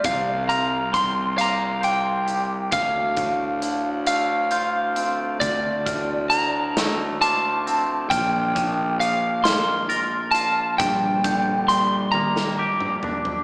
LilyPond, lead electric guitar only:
\new Staff \with { instrumentName = "Lead electric guitar" } { \time 6/8 \key d \minor \tempo 4. = 45 f''8 bes''8 c'''8 <f'' bes''>8 g''4 | f''4. f''4. | d''4 bes''4 a''4 | g''4 f''8 c'''4 a''8 |
g''4 c'''8 bes''4 r8 | }